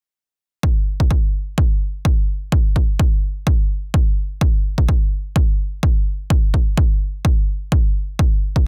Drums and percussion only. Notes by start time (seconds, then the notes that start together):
0.63 kick
1.00 kick
1.11 kick
1.58 kick
2.05 kick
2.52 kick
2.76 kick
3.00 kick
3.47 kick
3.94 kick
4.41 kick
4.78 kick
4.89 kick
5.36 kick
5.83 kick
6.30 kick
6.54 kick
6.77 kick
7.25 kick
7.72 kick
8.19 kick
8.56 kick